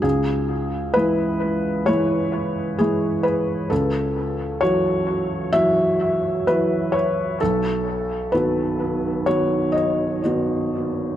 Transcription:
0.02 0.93 C#2 soft
0.02 0.95 G#4 medium
0.94 1.84 E3 soft
0.94 1.84 G#3 soft
0.94 1.84 E4 soft
0.94 1.87 B4 medium
1.86 2.75 E3 soft
1.86 2.75 G#3 soft
1.86 2.75 E4 soft
1.86 2.78 C#5 medium
2.79 3.67 E3 soft
2.79 3.67 G#3 soft
2.79 3.67 E4 soft
2.79 3.25 G#4 medium
3.23 3.70 B4 medium
3.70 4.60 C#2 soft
3.70 4.62 A4 medium
4.61 5.50 E3 soft
4.61 5.50 F#3 soft
4.61 5.50 F#4 soft
4.61 5.53 C#5 medium
5.53 6.43 E3 soft
5.53 6.43 F#3 soft
5.53 6.44 F#4 soft
5.53 6.47 E5 medium
6.47 7.37 E3 soft
6.47 7.37 F#3 soft
6.47 7.37 F#4 soft
6.47 6.94 B4 medium
6.92 7.39 C#5 medium
7.41 8.31 B1 soft
7.41 8.33 A4 medium
8.32 9.23 D#3 soft
8.32 9.22 B3 soft
8.32 9.23 F#4 soft
8.32 9.26 B4 medium
9.26 10.20 D#3 soft
9.26 10.20 B3 soft
9.26 10.20 F#4 soft
9.26 9.74 C#5 medium
9.72 11.16 D#5 medium
10.23 11.16 D#3 soft
10.23 11.16 B3 soft
10.23 11.16 F#4 soft

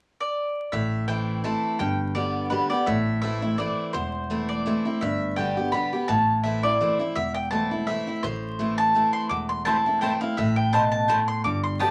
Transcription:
0.20 0.74 D5 medium
0.72 1.52 A1 medium
0.72 1.41 A2 medium
0.72 1.05 E5 medium
1.08 1.42 E3 medium
1.08 1.42 A3 medium
1.08 1.43 C4 medium
1.08 1.43 E4 medium
1.08 1.41 G5 medium
1.44 1.78 E3 medium
1.44 1.78 A3 medium
1.44 1.79 C4 medium
1.44 1.79 E4 medium
1.44 1.79 A5 medium
1.79 2.60 G1 medium
1.79 2.48 G2 medium
1.79 2.13 G5 medium
2.15 2.49 D3 medium
2.15 2.50 G3 medium
2.15 2.50 B3 medium
2.15 2.50 G4 medium
2.15 2.50 D5 medium
2.50 2.70 D3 medium
2.50 2.70 G3 medium
2.50 2.70 B3 medium
2.50 2.69 G4 medium
2.50 2.69 B4 medium
2.70 2.87 B3 medium
2.70 2.86 G4 medium
2.70 2.85 D5 medium
2.86 3.67 A1 medium
2.86 3.55 A2 medium
2.86 3.20 E5 medium
3.22 3.42 E3 medium
3.22 3.42 A3 medium
3.22 3.42 C4 medium
3.22 3.41 E4 medium
3.22 3.59 E5 medium
3.42 3.58 C4 soft
3.42 3.58 E4 medium
3.58 3.93 E3 medium
3.58 3.93 A3 medium
3.58 3.93 C4 medium
3.58 3.93 E4 medium
3.58 3.92 D5 medium
3.93 4.74 E1 medium
3.93 4.63 E2 medium
3.93 4.48 C5 medium
4.30 4.64 E3 medium
4.30 4.64 A3 medium
4.30 4.65 C4 medium
4.30 4.65 E4 medium
4.49 5.03 D5 medium
4.66 4.84 E3 medium
4.66 4.85 A3 medium
4.66 4.85 C4 medium
4.66 4.84 E4 medium
4.85 5.02 C4 medium
4.85 5.01 E4 medium
5.01 5.81 G1 medium
5.01 5.70 G2 medium
5.01 5.35 E5 medium
5.36 5.56 D3 medium
5.36 5.57 G3 medium
5.36 5.57 B3 medium
5.36 5.56 G4 medium
5.36 5.70 G5 medium
5.57 5.73 B3 soft
5.57 5.73 G4 medium
5.72 5.92 D3 medium
5.72 5.92 G3 medium
5.72 5.92 B3 medium
5.72 5.92 G4 medium
5.72 6.06 B5 medium
5.93 6.09 B3 soft
5.93 6.08 G4 medium
6.08 6.89 A1 medium
6.08 6.77 A2 medium
6.08 6.42 A5 medium
6.43 6.63 E3 medium
6.43 6.63 A3 medium
6.43 6.64 C4 medium
6.43 6.63 E4 medium
6.43 6.64 E5 medium
6.63 6.81 C4 medium
6.63 6.80 E4 medium
6.63 6.97 D5 loud
6.81 6.99 E3 medium
6.81 6.99 A3 medium
6.81 7.00 C4 medium
6.81 6.98 E4 medium
6.99 7.16 C4 medium
6.99 7.15 E4 medium
7.16 7.96 E1 medium
7.16 7.84 E2 medium
7.16 7.34 E5 medium
7.34 7.50 G5 medium
7.51 7.71 E3 medium
7.51 7.71 A3 medium
7.51 7.71 C4 medium
7.51 7.70 E4 medium
7.51 7.84 A5 loud
7.71 7.87 C4 soft
7.71 7.87 E4 medium
7.87 8.06 E3 medium
7.87 8.06 A3 medium
7.87 8.07 C4 medium
7.87 8.06 E4 medium
7.87 8.24 E5 medium
8.07 8.23 C4 soft
8.07 8.23 E4 medium
8.23 9.03 A1 medium
8.23 8.92 A2 medium
8.23 8.74 C5 medium
8.59 8.93 E3 medium
8.59 8.93 A3 medium
8.59 8.94 C4 medium
8.59 8.94 E4 medium
8.78 9.13 A5 loud
8.95 9.29 E3 medium
8.95 9.29 A3 medium
8.95 9.29 C4 medium
8.95 9.30 E4 medium
9.13 9.29 C6 loud
9.29 10.10 E1 medium
9.29 9.99 E2 medium
9.29 9.48 D6 medium
9.49 9.65 C6 medium
9.65 9.85 E3 medium
9.65 9.85 A3 medium
9.65 9.76 C4 medium
9.65 9.85 C4 medium
9.65 9.76 E4 medium
9.65 9.85 E4 medium
9.65 9.76 C5 medium
9.65 10.02 A5 loud
9.65 9.76 A5 medium
9.86 10.02 C4 soft
9.86 10.02 E4 medium
10.01 10.20 E3 medium
10.01 10.21 A3 medium
10.01 10.11 C4 loud
10.01 10.21 C4 medium
10.01 10.12 E4 medium
10.01 10.20 E4 medium
10.01 10.12 C5 medium
10.01 10.19 G5 medium
10.01 10.12 A5 loud
10.21 10.38 C4 medium
10.21 10.37 E4 medium
10.21 10.38 F5 medium
10.37 11.17 A1 medium
10.37 11.06 A2 medium
10.37 10.55 E5 medium
10.56 10.72 G5 loud
10.73 11.08 B2 medium
10.73 10.83 C4 medium
10.73 10.83 E4 medium
10.73 10.83 C5 loud
10.73 10.90 A5 loud
10.73 10.83 A5 loud
10.92 11.25 A5 loud
11.08 11.43 A2 loud
11.08 11.18 C4 medium
11.08 11.19 E4 medium
11.08 11.19 C5 medium
11.08 11.19 A5 loud
11.28 11.44 C6 medium
11.44 11.91 G1 medium
11.44 11.91 G2 medium
11.44 11.62 D6 loud
11.63 11.79 C6 medium
11.79 11.91 D3 medium
11.79 11.91 G3 medium
11.79 11.90 B3 medium
11.79 11.91 B3 medium
11.79 11.90 G4 medium
11.79 11.91 G4 medium
11.79 11.90 D5 medium
11.79 11.90 G5 medium
11.79 11.91 A5 loud

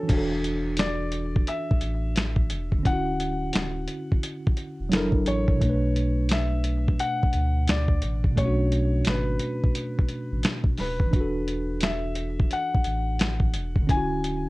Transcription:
0.00 0.03 E3 medium
0.00 2.78 E3 medium
0.00 0.08 D4 medium
0.00 0.11 F#4 medium
0.00 0.74 A4 medium
0.00 0.11 C#5 medium
0.00 0.11 G#5 medium
0.08 1.43 E1 loud
0.08 2.80 D4 medium
0.08 kick loud
0.08 closed hi-hat medium
0.08 crash medium
0.12 2.83 F#4 medium
0.17 2.85 A4 medium
0.44 closed hi-hat medium
0.77 1.50 D5 loud
0.77 finger snap medium
0.77 snare loud
0.77 closed hi-hat medium
1.12 closed hi-hat medium
1.36 kick medium
1.47 2.90 E5 loud
1.47 closed hi-hat medium
1.71 kick loud
1.81 2.15 A1 loud
1.81 closed hi-hat medium
2.16 2.53 A1 medium
2.16 finger snap medium
2.16 snare medium
2.16 closed hi-hat medium
2.36 kick medium
2.50 2.84 E1 loud
2.50 closed hi-hat medium
2.72 kick medium
2.79 4.85 D3 medium
2.83 3.51 D1 loud
2.83 4.87 C#4 medium
2.83 4.89 F#5 loud
2.83 kick medium
2.83 closed hi-hat medium
2.88 4.89 E4 medium
2.93 4.92 F#4 medium
3.20 closed hi-hat medium
3.53 3.87 D1 medium
3.53 finger snap loud
3.53 snare loud
3.53 closed hi-hat loud
3.88 closed hi-hat medium
4.12 kick medium
4.23 closed hi-hat medium
4.47 kick loud
4.57 closed hi-hat medium
4.80 4.92 E1 medium
4.89 5.25 F#1 medium
4.89 5.60 F#3 medium
4.89 5.61 D4 medium
4.89 5.62 E4 medium
4.89 snare loud
4.89 closed hi-hat medium
4.94 5.62 A4 medium
4.94 5.63 A#4 loud
4.94 finger snap medium
5.12 kick medium
5.26 5.60 A1 loud
5.26 6.34 C#5 loud
5.26 closed hi-hat medium
5.48 kick medium
5.55 8.30 B2 medium
5.60 6.95 B1 loud
5.60 8.32 A3 medium
5.60 kick loud
5.60 closed hi-hat medium
5.65 8.35 D4 medium
5.70 8.37 B4 medium
5.96 closed hi-hat medium
6.29 7.02 E5 loud
6.29 finger snap medium
6.29 snare loud
6.29 closed hi-hat loud
6.64 closed hi-hat medium
6.88 kick medium
6.99 7.70 F#5 loud
6.99 closed hi-hat medium
7.23 kick medium
7.33 7.67 D2 loud
7.33 closed hi-hat medium
7.68 8.01 D2 medium
7.68 8.39 D5 medium
7.68 finger snap medium
7.68 snare loud
7.68 closed hi-hat medium
7.88 kick medium
8.02 8.36 A1 loud
8.02 closed hi-hat medium
8.24 kick medium
8.31 11.06 B2 medium
8.36 9.03 B1 loud
8.36 11.08 A3 medium
8.36 9.08 C#5 medium
8.36 kick medium
8.36 closed hi-hat medium
8.41 8.47 C#4 soft
8.45 11.10 D4 medium
8.45 11.13 F#4 medium
8.72 closed hi-hat medium
9.05 9.39 G#1 medium
9.05 10.41 B4 medium
9.05 finger snap loud
9.05 snare loud
9.05 closed hi-hat loud
9.40 closed hi-hat medium
9.64 kick medium
9.75 closed hi-hat medium
9.99 kick medium
10.09 closed hi-hat medium
10.32 10.44 A1 medium
10.43 finger snap medium
10.43 snare loud
10.43 closed hi-hat medium
10.64 kick medium
10.78 11.11 D1 loud
10.78 11.85 B4 medium
10.78 snare soft
10.78 open hi-hat soft
11.00 kick medium
11.06 13.81 E3 medium
11.11 12.47 E1 loud
11.11 13.84 D4 medium
11.11 kick loud
11.11 closed hi-hat medium
11.16 13.86 F#4 medium
11.20 13.88 A4 medium
11.48 closed hi-hat medium
11.81 12.54 E5 loud
11.81 finger snap medium
11.81 snare loud
11.81 closed hi-hat medium
12.15 closed hi-hat medium
12.40 kick medium
12.51 13.94 F#5 loud
12.51 closed hi-hat medium
12.75 kick medium
12.84 13.18 A1 medium
12.84 closed hi-hat medium
13.19 13.56 A1 medium
13.19 finger snap medium
13.19 snare loud
13.19 closed hi-hat medium
13.40 kick medium
13.54 13.87 E1 loud
13.54 closed hi-hat medium
13.76 kick medium
13.82 14.49 D3 medium
13.87 14.49 D1 loud
13.87 14.49 C#4 medium
13.87 14.49 G#5 loud
13.87 kick loud
13.87 closed hi-hat medium
13.92 14.49 E4 medium
13.97 14.49 F#4 medium
14.24 closed hi-hat medium

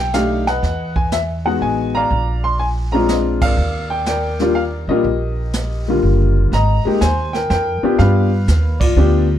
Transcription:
0.00 0.59 B1 medium
0.00 0.11 G4 medium
0.00 0.11 A4 medium
0.00 0.12 G5 medium
0.13 0.44 A3 medium
0.13 0.44 D4 soft
0.13 0.44 D#4 soft
0.13 0.44 G4 medium
0.13 0.44 F5 medium
0.13 snare medium
0.13 hi-hat pedal soft
0.47 1.09 B4 medium
0.47 1.09 D#5 medium
0.47 0.93 F#5 medium
0.47 snare soft
0.63 1.57 E2 medium
0.63 brush sweep soft
0.63 kick soft
0.63 snare soft
0.96 1.13 G#5 medium
0.96 kick medium
1.12 1.20 E5 medium
1.12 snare medium
1.12 hi-hat pedal medium
1.45 2.07 G#3 medium
1.45 2.08 B3 medium
1.45 2.08 D#4 medium
1.45 2.08 F#4 medium
1.45 1.60 F#5 medium
1.61 2.07 A1 medium
1.61 1.95 G#5 medium
1.95 2.57 D5 medium
1.95 2.57 F5 medium
1.95 2.40 A#5 loud
2.10 3.54 A#1 medium
2.10 brush sweep soft
2.10 kick soft
2.44 2.60 C6 medium
2.59 2.67 G#5 medium
2.92 3.55 G#3 medium
2.92 3.55 C4 medium
2.92 3.55 D4 medium
2.92 3.56 F4 medium
2.92 3.09 A#5 medium
3.08 3.16 D#5 medium
3.08 snare medium
3.08 hi-hat pedal medium
3.41 4.04 A#4 medium
3.41 4.04 D5 medium
3.41 3.87 F5 loud
3.41 kick medium
3.41 ride medium
3.57 4.84 D#2 medium
3.57 brush sweep soft
3.90 4.05 G5 medium
4.06 4.86 A#4 medium
4.06 4.86 D5 medium
4.06 4.57 G5 medium
4.06 snare medium
4.06 hi-hat pedal soft
4.39 4.54 G3 medium
4.39 4.55 A#3 medium
4.39 4.55 D4 medium
4.39 4.55 F4 medium
4.39 snare soft
4.55 4.63 F5 medium
4.87 5.03 A#2 medium
4.87 5.04 G3 medium
4.87 5.04 A#3 medium
4.87 5.04 D4 medium
4.87 5.05 F4 medium
4.87 6.33 G4 medium
4.87 6.33 A#4 medium
4.87 6.32 D#5 medium
5.04 5.99 A#1 medium
5.04 brush sweep soft
5.04 kick soft
5.53 snare medium
5.53 hi-hat pedal medium
5.88 6.50 D3 medium
5.88 6.49 G3 medium
5.88 6.50 A#3 medium
5.88 6.50 F4 medium
6.03 6.48 F#1 medium
6.52 6.82 G#1 medium
6.52 6.99 D#5 medium
6.52 7.03 A#5 loud
6.52 brush sweep soft
6.52 kick soft
6.52 snare soft
6.85 7.00 G#3 medium
6.85 7.00 A#3 medium
6.85 7.00 D#4 medium
6.85 7.01 G4 medium
6.85 muted upright bass stroke soft
7.01 7.48 D#2 medium
7.01 7.32 C5 medium
7.01 7.35 G#5 medium
7.01 kick soft
7.01 snare medium
7.01 hi-hat pedal medium
7.33 7.50 A#4 medium
7.33 7.49 G5 medium
7.33 snare soft
7.50 7.80 F2 medium
7.50 7.97 A#4 medium
7.50 8.01 G5 medium
7.50 kick soft
7.50 snare soft
7.82 7.98 B3 medium
7.82 7.98 D4 medium
7.82 7.98 F4 medium
7.82 7.98 G4 medium
7.82 muted upright bass stroke soft
7.99 8.46 G2 medium
7.99 8.29 B3 medium
7.99 8.29 D4 medium
7.99 8.30 F4 medium
7.99 8.30 G4 medium
7.99 8.77 B4 medium
7.99 8.76 F5 medium
7.99 brush sweep soft
7.99 kick soft
7.99 snare soft
8.48 8.95 D#2 medium
8.48 kick soft
8.48 snare medium
8.48 hi-hat pedal medium
8.80 8.96 F4 medium
8.80 9.26 D5 medium
8.80 kick medium
8.80 crash medium
8.96 9.39 D2 medium
8.96 9.26 B3 medium
8.96 9.26 D4 medium
8.96 9.27 F4 medium
8.96 9.27 G4 medium

